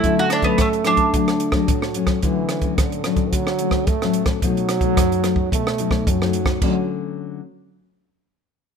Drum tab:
CC |----------------|----------------|----------------|x---------------|
HH |x-xxxxxxxxx-x-xx|x-xxxxxxx-x-xxxx|xxxxxxx-x-x-x-x-|----------------|
SD |--r-r-r--r-r-r-r|--r-r-r--r-r-r-r|--r-r-r--r-r-r-r|----------------|
BD |o--oo--oo--oo--o|o--oo--oo--oo--o|o--oo--oo--oo--o|o---------------|